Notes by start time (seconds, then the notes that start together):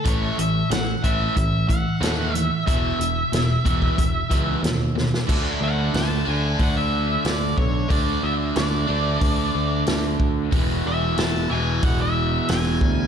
0.05 A1 A2 E3 A3 C#5, kick, closed hi-hat
0.38 A1 A2 E3 E5, closed hi-hat
0.70 A1 A2 E3 F#5, snare, closed hi-hat
1.04 A1 A2 E3 A3 E5, kick, closed hi-hat
1.36 A1 A2 E3 E5, kick, closed hi-hat
1.69 A2 E3 F#5, kick, closed hi-hat
2.01 D#2 A2 E3 A3, snare, closed hi-hat
2.34 A2 E3 E5, closed hi-hat
2.67 E1 E2 B2 E3 E5, kick, closed hi-hat
2.99 E1 E2 B2, closed hi-hat
3.32 E1 E2 B2, snare, closed hi-hat
3.65 E1 E2 B2 E3, kick, closed hi-hat
3.82 kick
3.97 E1 E2 B2, kick, closed hi-hat
4.30 C#2 E2 B2 E3, kick, closed hi-hat
4.63 D#2 E2 B2, snare, closed hi-hat
4.95 E2 B2, snare
5.14 snare
5.27 D2 D3 A3 D4, kick, crash
5.61 D2 F#5
5.94 D2 A5, snare, open hi-hat
6.25 D2 D3 A3 D4 G#5
6.59 D2 F#5, kick, open hi-hat
6.77 E5
7.25 D2 D5, snare, open hi-hat
7.58 B1 C#5, kick
7.89 D2 D3 A3 D4 D5, kick, open hi-hat
8.23 D2 E5
8.56 D2 D5, snare, open hi-hat
8.87 D2 D3 A3 D4
9.21 D2, kick, open hi-hat
9.55 D2
9.87 D2, snare, open hi-hat
10.20 D2, kick
10.51 E1 E2 B2 E3, kick, open hi-hat
10.86 E1 E5
11.18 E1 A5, snare, open hi-hat
11.50 E1 E2 B2 E3 G#5
11.83 E1 F#5, kick, open hi-hat
12.01 E5
12.49 E1 G#5, snare, open hi-hat
12.81 D2, kick